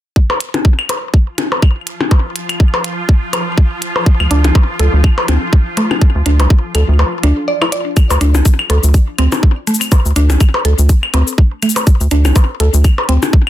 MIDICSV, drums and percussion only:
0, 0, Header, 1, 3, 480
1, 0, Start_track
1, 0, Key_signature, -1, "minor"
1, 0, Tempo, 487805
1, 158, Time_signature, 4, 2, 24, 8
1, 13281, End_track
2, 0, Start_track
2, 0, Title_t, "Percussion blips"
2, 294, Note_on_c, 9, 77, 41
2, 392, Note_off_c, 9, 77, 0
2, 534, Note_on_c, 9, 64, 73
2, 632, Note_off_c, 9, 64, 0
2, 880, Note_on_c, 9, 77, 40
2, 978, Note_off_c, 9, 77, 0
2, 1359, Note_on_c, 9, 64, 71
2, 1457, Note_off_c, 9, 64, 0
2, 1494, Note_on_c, 9, 77, 39
2, 1592, Note_off_c, 9, 77, 0
2, 1974, Note_on_c, 9, 64, 73
2, 2072, Note_off_c, 9, 64, 0
2, 2079, Note_on_c, 9, 77, 43
2, 2177, Note_off_c, 9, 77, 0
2, 2693, Note_on_c, 9, 77, 43
2, 2791, Note_off_c, 9, 77, 0
2, 3278, Note_on_c, 9, 77, 42
2, 3376, Note_off_c, 9, 77, 0
2, 3894, Note_on_c, 9, 77, 41
2, 3992, Note_off_c, 9, 77, 0
2, 4375, Note_on_c, 9, 64, 77
2, 4473, Note_off_c, 9, 64, 0
2, 4480, Note_on_c, 9, 77, 43
2, 4578, Note_off_c, 9, 77, 0
2, 5094, Note_on_c, 9, 77, 44
2, 5193, Note_off_c, 9, 77, 0
2, 5200, Note_on_c, 9, 64, 72
2, 5298, Note_off_c, 9, 64, 0
2, 5680, Note_on_c, 9, 77, 43
2, 5779, Note_off_c, 9, 77, 0
2, 5815, Note_on_c, 9, 64, 73
2, 5913, Note_off_c, 9, 64, 0
2, 6294, Note_on_c, 9, 77, 43
2, 6393, Note_off_c, 9, 77, 0
2, 6880, Note_on_c, 9, 77, 43
2, 6978, Note_off_c, 9, 77, 0
2, 7494, Note_on_c, 9, 77, 43
2, 7593, Note_off_c, 9, 77, 0
2, 7975, Note_on_c, 9, 77, 43
2, 8073, Note_off_c, 9, 77, 0
2, 8214, Note_on_c, 9, 64, 91
2, 8312, Note_off_c, 9, 64, 0
2, 8558, Note_on_c, 9, 77, 43
2, 8657, Note_off_c, 9, 77, 0
2, 9174, Note_on_c, 9, 64, 78
2, 9174, Note_on_c, 9, 77, 41
2, 9273, Note_off_c, 9, 64, 0
2, 9273, Note_off_c, 9, 77, 0
2, 9758, Note_on_c, 9, 77, 44
2, 9857, Note_off_c, 9, 77, 0
2, 10133, Note_on_c, 9, 64, 90
2, 10231, Note_off_c, 9, 64, 0
2, 10373, Note_on_c, 9, 77, 46
2, 10472, Note_off_c, 9, 77, 0
2, 10959, Note_on_c, 9, 77, 42
2, 11058, Note_off_c, 9, 77, 0
2, 11574, Note_on_c, 9, 77, 43
2, 11672, Note_off_c, 9, 77, 0
2, 12054, Note_on_c, 9, 64, 90
2, 12153, Note_off_c, 9, 64, 0
2, 12160, Note_on_c, 9, 77, 45
2, 12258, Note_off_c, 9, 77, 0
2, 12774, Note_on_c, 9, 77, 45
2, 12873, Note_off_c, 9, 77, 0
2, 13015, Note_on_c, 9, 64, 75
2, 13114, Note_off_c, 9, 64, 0
2, 13281, End_track
3, 0, Start_track
3, 0, Title_t, "Drums"
3, 158, Note_on_c, 9, 36, 107
3, 257, Note_off_c, 9, 36, 0
3, 398, Note_on_c, 9, 42, 85
3, 497, Note_off_c, 9, 42, 0
3, 533, Note_on_c, 9, 42, 32
3, 631, Note_off_c, 9, 42, 0
3, 638, Note_on_c, 9, 36, 99
3, 737, Note_off_c, 9, 36, 0
3, 774, Note_on_c, 9, 75, 62
3, 873, Note_off_c, 9, 75, 0
3, 878, Note_on_c, 9, 42, 83
3, 977, Note_off_c, 9, 42, 0
3, 1118, Note_on_c, 9, 36, 98
3, 1217, Note_off_c, 9, 36, 0
3, 1359, Note_on_c, 9, 42, 81
3, 1457, Note_off_c, 9, 42, 0
3, 1598, Note_on_c, 9, 36, 102
3, 1599, Note_on_c, 9, 75, 64
3, 1697, Note_off_c, 9, 36, 0
3, 1697, Note_off_c, 9, 75, 0
3, 1838, Note_on_c, 9, 42, 81
3, 1937, Note_off_c, 9, 42, 0
3, 2078, Note_on_c, 9, 36, 110
3, 2177, Note_off_c, 9, 36, 0
3, 2319, Note_on_c, 9, 42, 86
3, 2417, Note_off_c, 9, 42, 0
3, 2454, Note_on_c, 9, 42, 33
3, 2454, Note_on_c, 9, 75, 58
3, 2552, Note_off_c, 9, 42, 0
3, 2552, Note_off_c, 9, 75, 0
3, 2558, Note_on_c, 9, 36, 105
3, 2657, Note_off_c, 9, 36, 0
3, 2799, Note_on_c, 9, 42, 86
3, 2897, Note_off_c, 9, 42, 0
3, 3038, Note_on_c, 9, 36, 104
3, 3137, Note_off_c, 9, 36, 0
3, 3278, Note_on_c, 9, 42, 88
3, 3278, Note_on_c, 9, 75, 61
3, 3376, Note_off_c, 9, 75, 0
3, 3377, Note_off_c, 9, 42, 0
3, 3518, Note_on_c, 9, 36, 106
3, 3617, Note_off_c, 9, 36, 0
3, 3758, Note_on_c, 9, 42, 87
3, 3857, Note_off_c, 9, 42, 0
3, 3998, Note_on_c, 9, 36, 116
3, 4097, Note_off_c, 9, 36, 0
3, 4134, Note_on_c, 9, 75, 61
3, 4232, Note_off_c, 9, 75, 0
3, 4239, Note_on_c, 9, 42, 88
3, 4337, Note_off_c, 9, 42, 0
3, 4373, Note_on_c, 9, 42, 34
3, 4472, Note_off_c, 9, 42, 0
3, 4478, Note_on_c, 9, 36, 111
3, 4577, Note_off_c, 9, 36, 0
3, 4718, Note_on_c, 9, 42, 92
3, 4817, Note_off_c, 9, 42, 0
3, 4959, Note_on_c, 9, 36, 106
3, 4959, Note_on_c, 9, 75, 61
3, 5057, Note_off_c, 9, 36, 0
3, 5058, Note_off_c, 9, 75, 0
3, 5199, Note_on_c, 9, 42, 92
3, 5297, Note_off_c, 9, 42, 0
3, 5439, Note_on_c, 9, 36, 112
3, 5537, Note_off_c, 9, 36, 0
3, 5678, Note_on_c, 9, 42, 88
3, 5777, Note_off_c, 9, 42, 0
3, 5815, Note_on_c, 9, 75, 56
3, 5913, Note_off_c, 9, 75, 0
3, 5919, Note_on_c, 9, 36, 112
3, 6017, Note_off_c, 9, 36, 0
3, 6158, Note_on_c, 9, 42, 88
3, 6256, Note_off_c, 9, 42, 0
3, 6294, Note_on_c, 9, 42, 36
3, 6392, Note_off_c, 9, 42, 0
3, 6399, Note_on_c, 9, 36, 113
3, 6497, Note_off_c, 9, 36, 0
3, 6639, Note_on_c, 9, 42, 90
3, 6640, Note_on_c, 9, 75, 60
3, 6737, Note_off_c, 9, 42, 0
3, 6738, Note_off_c, 9, 75, 0
3, 7119, Note_on_c, 9, 42, 89
3, 7217, Note_off_c, 9, 42, 0
3, 7494, Note_on_c, 9, 75, 60
3, 7593, Note_off_c, 9, 75, 0
3, 7599, Note_on_c, 9, 42, 87
3, 7698, Note_off_c, 9, 42, 0
3, 7839, Note_on_c, 9, 36, 111
3, 7840, Note_on_c, 9, 75, 67
3, 7840, Note_on_c, 9, 82, 50
3, 7937, Note_off_c, 9, 36, 0
3, 7938, Note_off_c, 9, 75, 0
3, 7938, Note_off_c, 9, 82, 0
3, 7974, Note_on_c, 9, 82, 30
3, 8073, Note_off_c, 9, 82, 0
3, 8079, Note_on_c, 9, 42, 88
3, 8079, Note_on_c, 9, 82, 30
3, 8178, Note_off_c, 9, 42, 0
3, 8178, Note_off_c, 9, 82, 0
3, 8214, Note_on_c, 9, 82, 43
3, 8312, Note_off_c, 9, 82, 0
3, 8319, Note_on_c, 9, 36, 110
3, 8319, Note_on_c, 9, 82, 51
3, 8417, Note_off_c, 9, 36, 0
3, 8417, Note_off_c, 9, 82, 0
3, 8454, Note_on_c, 9, 75, 68
3, 8552, Note_off_c, 9, 75, 0
3, 8559, Note_on_c, 9, 42, 93
3, 8657, Note_off_c, 9, 42, 0
3, 8693, Note_on_c, 9, 82, 43
3, 8792, Note_off_c, 9, 82, 0
3, 8799, Note_on_c, 9, 36, 110
3, 8799, Note_on_c, 9, 82, 52
3, 8897, Note_off_c, 9, 36, 0
3, 8897, Note_off_c, 9, 82, 0
3, 9038, Note_on_c, 9, 42, 87
3, 9039, Note_on_c, 9, 75, 63
3, 9136, Note_off_c, 9, 42, 0
3, 9137, Note_off_c, 9, 75, 0
3, 9173, Note_on_c, 9, 82, 42
3, 9271, Note_off_c, 9, 82, 0
3, 9279, Note_on_c, 9, 36, 107
3, 9377, Note_off_c, 9, 36, 0
3, 9519, Note_on_c, 9, 42, 82
3, 9519, Note_on_c, 9, 82, 37
3, 9586, Note_off_c, 9, 82, 0
3, 9586, Note_on_c, 9, 82, 49
3, 9617, Note_off_c, 9, 42, 0
3, 9653, Note_off_c, 9, 82, 0
3, 9653, Note_on_c, 9, 42, 34
3, 9653, Note_on_c, 9, 75, 62
3, 9653, Note_on_c, 9, 82, 41
3, 9751, Note_off_c, 9, 75, 0
3, 9752, Note_off_c, 9, 42, 0
3, 9752, Note_off_c, 9, 82, 0
3, 9759, Note_on_c, 9, 36, 115
3, 9759, Note_on_c, 9, 82, 49
3, 9857, Note_off_c, 9, 36, 0
3, 9857, Note_off_c, 9, 82, 0
3, 9894, Note_on_c, 9, 82, 29
3, 9993, Note_off_c, 9, 82, 0
3, 9999, Note_on_c, 9, 42, 89
3, 9999, Note_on_c, 9, 82, 29
3, 10098, Note_off_c, 9, 42, 0
3, 10098, Note_off_c, 9, 82, 0
3, 10134, Note_on_c, 9, 42, 36
3, 10134, Note_on_c, 9, 82, 41
3, 10232, Note_off_c, 9, 42, 0
3, 10232, Note_off_c, 9, 82, 0
3, 10238, Note_on_c, 9, 75, 63
3, 10239, Note_on_c, 9, 36, 117
3, 10239, Note_on_c, 9, 82, 52
3, 10337, Note_off_c, 9, 36, 0
3, 10337, Note_off_c, 9, 75, 0
3, 10337, Note_off_c, 9, 82, 0
3, 10479, Note_on_c, 9, 42, 96
3, 10577, Note_off_c, 9, 42, 0
3, 10613, Note_on_c, 9, 82, 41
3, 10712, Note_off_c, 9, 82, 0
3, 10719, Note_on_c, 9, 36, 111
3, 10719, Note_on_c, 9, 82, 50
3, 10817, Note_off_c, 9, 36, 0
3, 10817, Note_off_c, 9, 82, 0
3, 10854, Note_on_c, 9, 75, 63
3, 10952, Note_off_c, 9, 75, 0
3, 10959, Note_on_c, 9, 42, 93
3, 11057, Note_off_c, 9, 42, 0
3, 11093, Note_on_c, 9, 82, 40
3, 11192, Note_off_c, 9, 82, 0
3, 11199, Note_on_c, 9, 36, 113
3, 11297, Note_off_c, 9, 36, 0
3, 11439, Note_on_c, 9, 42, 84
3, 11439, Note_on_c, 9, 75, 61
3, 11439, Note_on_c, 9, 82, 36
3, 11506, Note_off_c, 9, 82, 0
3, 11506, Note_on_c, 9, 82, 47
3, 11537, Note_off_c, 9, 42, 0
3, 11537, Note_off_c, 9, 75, 0
3, 11573, Note_off_c, 9, 82, 0
3, 11573, Note_on_c, 9, 42, 34
3, 11573, Note_on_c, 9, 82, 41
3, 11672, Note_off_c, 9, 42, 0
3, 11672, Note_off_c, 9, 82, 0
3, 11679, Note_on_c, 9, 36, 120
3, 11679, Note_on_c, 9, 82, 48
3, 11777, Note_off_c, 9, 36, 0
3, 11777, Note_off_c, 9, 82, 0
3, 11813, Note_on_c, 9, 82, 28
3, 11912, Note_off_c, 9, 82, 0
3, 11919, Note_on_c, 9, 42, 97
3, 11919, Note_on_c, 9, 82, 28
3, 12017, Note_off_c, 9, 42, 0
3, 12017, Note_off_c, 9, 82, 0
3, 12053, Note_on_c, 9, 82, 38
3, 12054, Note_on_c, 9, 75, 59
3, 12152, Note_off_c, 9, 82, 0
3, 12153, Note_off_c, 9, 75, 0
3, 12159, Note_on_c, 9, 36, 120
3, 12159, Note_on_c, 9, 82, 48
3, 12257, Note_off_c, 9, 36, 0
3, 12257, Note_off_c, 9, 82, 0
3, 12398, Note_on_c, 9, 42, 97
3, 12497, Note_off_c, 9, 42, 0
3, 12534, Note_on_c, 9, 82, 40
3, 12632, Note_off_c, 9, 82, 0
3, 12639, Note_on_c, 9, 36, 114
3, 12639, Note_on_c, 9, 82, 50
3, 12640, Note_on_c, 9, 75, 64
3, 12737, Note_off_c, 9, 36, 0
3, 12737, Note_off_c, 9, 82, 0
3, 12739, Note_off_c, 9, 75, 0
3, 12878, Note_on_c, 9, 42, 93
3, 12977, Note_off_c, 9, 42, 0
3, 13014, Note_on_c, 9, 82, 41
3, 13112, Note_off_c, 9, 82, 0
3, 13119, Note_on_c, 9, 36, 113
3, 13217, Note_off_c, 9, 36, 0
3, 13281, End_track
0, 0, End_of_file